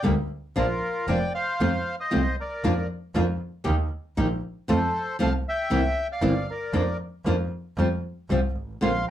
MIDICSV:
0, 0, Header, 1, 4, 480
1, 0, Start_track
1, 0, Key_signature, -2, "major"
1, 0, Tempo, 515464
1, 528, Time_signature, 4, 2, 24, 8
1, 8474, End_track
2, 0, Start_track
2, 0, Title_t, "Bandoneon"
2, 0, Program_c, 0, 23
2, 536, Note_on_c, 0, 70, 86
2, 542, Note_on_c, 0, 65, 67
2, 984, Note_off_c, 0, 65, 0
2, 1009, Note_on_c, 0, 79, 93
2, 1022, Note_on_c, 0, 74, 75
2, 1029, Note_off_c, 0, 70, 0
2, 1234, Note_off_c, 0, 79, 0
2, 1241, Note_off_c, 0, 74, 0
2, 1254, Note_on_c, 0, 77, 99
2, 1260, Note_on_c, 0, 72, 71
2, 1819, Note_off_c, 0, 77, 0
2, 1822, Note_off_c, 0, 72, 0
2, 1863, Note_on_c, 0, 75, 89
2, 1871, Note_on_c, 0, 72, 69
2, 2194, Note_off_c, 0, 75, 0
2, 2198, Note_off_c, 0, 72, 0
2, 2237, Note_on_c, 0, 70, 59
2, 2244, Note_on_c, 0, 74, 76
2, 2672, Note_off_c, 0, 70, 0
2, 2676, Note_off_c, 0, 74, 0
2, 4368, Note_on_c, 0, 72, 95
2, 4369, Note_on_c, 0, 69, 71
2, 4810, Note_off_c, 0, 72, 0
2, 4811, Note_off_c, 0, 69, 0
2, 4860, Note_on_c, 0, 77, 80
2, 4865, Note_on_c, 0, 81, 100
2, 4963, Note_off_c, 0, 77, 0
2, 4967, Note_off_c, 0, 81, 0
2, 5108, Note_on_c, 0, 76, 83
2, 5117, Note_on_c, 0, 79, 103
2, 5654, Note_off_c, 0, 76, 0
2, 5658, Note_off_c, 0, 79, 0
2, 5702, Note_on_c, 0, 74, 70
2, 5702, Note_on_c, 0, 77, 83
2, 6024, Note_off_c, 0, 74, 0
2, 6056, Note_on_c, 0, 70, 62
2, 6059, Note_off_c, 0, 77, 0
2, 6064, Note_on_c, 0, 74, 76
2, 6491, Note_off_c, 0, 70, 0
2, 6496, Note_off_c, 0, 74, 0
2, 8215, Note_on_c, 0, 84, 99
2, 8220, Note_on_c, 0, 77, 76
2, 8432, Note_off_c, 0, 84, 0
2, 8434, Note_off_c, 0, 77, 0
2, 8474, End_track
3, 0, Start_track
3, 0, Title_t, "Nylon-string guitar"
3, 0, Program_c, 1, 24
3, 24, Note_on_c, 1, 50, 69
3, 32, Note_on_c, 1, 55, 78
3, 35, Note_on_c, 1, 62, 81
3, 37, Note_on_c, 1, 58, 82
3, 43, Note_on_c, 1, 67, 83
3, 118, Note_off_c, 1, 50, 0
3, 122, Note_off_c, 1, 55, 0
3, 124, Note_off_c, 1, 62, 0
3, 125, Note_off_c, 1, 58, 0
3, 128, Note_off_c, 1, 67, 0
3, 518, Note_on_c, 1, 53, 81
3, 525, Note_on_c, 1, 65, 87
3, 526, Note_on_c, 1, 58, 83
3, 528, Note_on_c, 1, 62, 88
3, 607, Note_off_c, 1, 53, 0
3, 611, Note_off_c, 1, 58, 0
3, 611, Note_off_c, 1, 65, 0
3, 612, Note_off_c, 1, 62, 0
3, 1002, Note_on_c, 1, 62, 80
3, 1003, Note_on_c, 1, 58, 77
3, 1008, Note_on_c, 1, 53, 80
3, 1017, Note_on_c, 1, 65, 81
3, 1090, Note_off_c, 1, 62, 0
3, 1091, Note_off_c, 1, 58, 0
3, 1093, Note_off_c, 1, 53, 0
3, 1098, Note_off_c, 1, 65, 0
3, 1493, Note_on_c, 1, 57, 84
3, 1494, Note_on_c, 1, 48, 75
3, 1498, Note_on_c, 1, 53, 79
3, 1501, Note_on_c, 1, 65, 78
3, 1505, Note_on_c, 1, 60, 81
3, 1577, Note_off_c, 1, 57, 0
3, 1578, Note_off_c, 1, 48, 0
3, 1580, Note_off_c, 1, 53, 0
3, 1582, Note_off_c, 1, 65, 0
3, 1584, Note_off_c, 1, 60, 0
3, 1964, Note_on_c, 1, 53, 72
3, 1969, Note_on_c, 1, 48, 80
3, 1969, Note_on_c, 1, 65, 89
3, 1974, Note_on_c, 1, 57, 78
3, 1975, Note_on_c, 1, 60, 84
3, 2053, Note_off_c, 1, 53, 0
3, 2055, Note_off_c, 1, 48, 0
3, 2055, Note_off_c, 1, 65, 0
3, 2058, Note_off_c, 1, 57, 0
3, 2059, Note_off_c, 1, 60, 0
3, 2456, Note_on_c, 1, 53, 77
3, 2463, Note_on_c, 1, 58, 88
3, 2463, Note_on_c, 1, 62, 89
3, 2464, Note_on_c, 1, 65, 94
3, 2539, Note_off_c, 1, 53, 0
3, 2542, Note_off_c, 1, 58, 0
3, 2542, Note_off_c, 1, 62, 0
3, 2543, Note_off_c, 1, 65, 0
3, 2929, Note_on_c, 1, 53, 76
3, 2937, Note_on_c, 1, 58, 78
3, 2937, Note_on_c, 1, 62, 81
3, 2942, Note_on_c, 1, 65, 89
3, 3014, Note_off_c, 1, 53, 0
3, 3019, Note_off_c, 1, 58, 0
3, 3019, Note_off_c, 1, 62, 0
3, 3021, Note_off_c, 1, 65, 0
3, 3389, Note_on_c, 1, 58, 79
3, 3390, Note_on_c, 1, 51, 81
3, 3393, Note_on_c, 1, 63, 81
3, 3395, Note_on_c, 1, 67, 86
3, 3485, Note_off_c, 1, 51, 0
3, 3485, Note_off_c, 1, 58, 0
3, 3486, Note_off_c, 1, 63, 0
3, 3488, Note_off_c, 1, 67, 0
3, 3884, Note_on_c, 1, 51, 81
3, 3885, Note_on_c, 1, 63, 86
3, 3886, Note_on_c, 1, 58, 78
3, 3890, Note_on_c, 1, 67, 88
3, 3971, Note_off_c, 1, 51, 0
3, 3972, Note_off_c, 1, 58, 0
3, 3972, Note_off_c, 1, 63, 0
3, 3974, Note_off_c, 1, 67, 0
3, 4359, Note_on_c, 1, 48, 85
3, 4365, Note_on_c, 1, 53, 91
3, 4369, Note_on_c, 1, 60, 94
3, 4369, Note_on_c, 1, 65, 91
3, 4371, Note_on_c, 1, 57, 88
3, 4446, Note_off_c, 1, 48, 0
3, 4449, Note_off_c, 1, 53, 0
3, 4451, Note_off_c, 1, 65, 0
3, 4452, Note_off_c, 1, 57, 0
3, 4452, Note_off_c, 1, 60, 0
3, 4832, Note_on_c, 1, 53, 83
3, 4840, Note_on_c, 1, 48, 77
3, 4843, Note_on_c, 1, 57, 89
3, 4844, Note_on_c, 1, 60, 89
3, 4847, Note_on_c, 1, 65, 84
3, 4921, Note_off_c, 1, 53, 0
3, 4924, Note_off_c, 1, 48, 0
3, 4926, Note_off_c, 1, 57, 0
3, 4927, Note_off_c, 1, 60, 0
3, 4928, Note_off_c, 1, 65, 0
3, 5309, Note_on_c, 1, 48, 74
3, 5315, Note_on_c, 1, 52, 82
3, 5315, Note_on_c, 1, 60, 84
3, 5316, Note_on_c, 1, 58, 84
3, 5321, Note_on_c, 1, 64, 85
3, 5397, Note_off_c, 1, 48, 0
3, 5400, Note_off_c, 1, 52, 0
3, 5401, Note_off_c, 1, 58, 0
3, 5401, Note_off_c, 1, 60, 0
3, 5403, Note_off_c, 1, 64, 0
3, 5788, Note_on_c, 1, 48, 82
3, 5792, Note_on_c, 1, 58, 87
3, 5793, Note_on_c, 1, 64, 81
3, 5796, Note_on_c, 1, 52, 83
3, 5798, Note_on_c, 1, 60, 90
3, 5876, Note_off_c, 1, 48, 0
3, 5878, Note_off_c, 1, 58, 0
3, 5878, Note_off_c, 1, 64, 0
3, 5880, Note_off_c, 1, 52, 0
3, 5881, Note_off_c, 1, 60, 0
3, 6271, Note_on_c, 1, 53, 81
3, 6271, Note_on_c, 1, 58, 88
3, 6272, Note_on_c, 1, 62, 85
3, 6277, Note_on_c, 1, 65, 95
3, 6356, Note_off_c, 1, 53, 0
3, 6356, Note_off_c, 1, 58, 0
3, 6357, Note_off_c, 1, 62, 0
3, 6360, Note_off_c, 1, 65, 0
3, 6759, Note_on_c, 1, 58, 80
3, 6763, Note_on_c, 1, 53, 80
3, 6768, Note_on_c, 1, 65, 88
3, 6770, Note_on_c, 1, 62, 79
3, 6840, Note_off_c, 1, 58, 0
3, 6842, Note_off_c, 1, 53, 0
3, 6844, Note_off_c, 1, 65, 0
3, 6845, Note_off_c, 1, 62, 0
3, 7249, Note_on_c, 1, 53, 74
3, 7250, Note_on_c, 1, 55, 72
3, 7257, Note_on_c, 1, 65, 74
3, 7261, Note_on_c, 1, 60, 81
3, 7325, Note_off_c, 1, 53, 0
3, 7326, Note_off_c, 1, 55, 0
3, 7329, Note_off_c, 1, 65, 0
3, 7331, Note_off_c, 1, 60, 0
3, 7728, Note_on_c, 1, 55, 82
3, 7737, Note_on_c, 1, 53, 74
3, 7738, Note_on_c, 1, 60, 88
3, 7747, Note_on_c, 1, 65, 84
3, 7806, Note_off_c, 1, 55, 0
3, 7811, Note_off_c, 1, 53, 0
3, 7811, Note_off_c, 1, 60, 0
3, 7816, Note_off_c, 1, 65, 0
3, 8203, Note_on_c, 1, 50, 83
3, 8217, Note_on_c, 1, 58, 86
3, 8217, Note_on_c, 1, 60, 92
3, 8217, Note_on_c, 1, 65, 89
3, 8285, Note_off_c, 1, 50, 0
3, 8291, Note_off_c, 1, 65, 0
3, 8292, Note_off_c, 1, 58, 0
3, 8292, Note_off_c, 1, 60, 0
3, 8474, End_track
4, 0, Start_track
4, 0, Title_t, "Double bass"
4, 0, Program_c, 2, 43
4, 45, Note_on_c, 2, 38, 90
4, 248, Note_off_c, 2, 38, 0
4, 523, Note_on_c, 2, 34, 82
4, 728, Note_off_c, 2, 34, 0
4, 1000, Note_on_c, 2, 29, 86
4, 1208, Note_off_c, 2, 29, 0
4, 1491, Note_on_c, 2, 41, 84
4, 1695, Note_off_c, 2, 41, 0
4, 1981, Note_on_c, 2, 36, 86
4, 2180, Note_off_c, 2, 36, 0
4, 2452, Note_on_c, 2, 41, 86
4, 2655, Note_off_c, 2, 41, 0
4, 2929, Note_on_c, 2, 41, 93
4, 3133, Note_off_c, 2, 41, 0
4, 3406, Note_on_c, 2, 39, 90
4, 3611, Note_off_c, 2, 39, 0
4, 3884, Note_on_c, 2, 34, 95
4, 4089, Note_off_c, 2, 34, 0
4, 4367, Note_on_c, 2, 41, 92
4, 4567, Note_off_c, 2, 41, 0
4, 4852, Note_on_c, 2, 36, 93
4, 5047, Note_off_c, 2, 36, 0
4, 5320, Note_on_c, 2, 36, 94
4, 5520, Note_off_c, 2, 36, 0
4, 5788, Note_on_c, 2, 31, 99
4, 5994, Note_off_c, 2, 31, 0
4, 6264, Note_on_c, 2, 41, 88
4, 6470, Note_off_c, 2, 41, 0
4, 6749, Note_on_c, 2, 41, 89
4, 6953, Note_off_c, 2, 41, 0
4, 7235, Note_on_c, 2, 41, 90
4, 7437, Note_off_c, 2, 41, 0
4, 7721, Note_on_c, 2, 36, 86
4, 7922, Note_off_c, 2, 36, 0
4, 7968, Note_on_c, 2, 32, 47
4, 8200, Note_off_c, 2, 32, 0
4, 8205, Note_on_c, 2, 34, 88
4, 8404, Note_off_c, 2, 34, 0
4, 8474, End_track
0, 0, End_of_file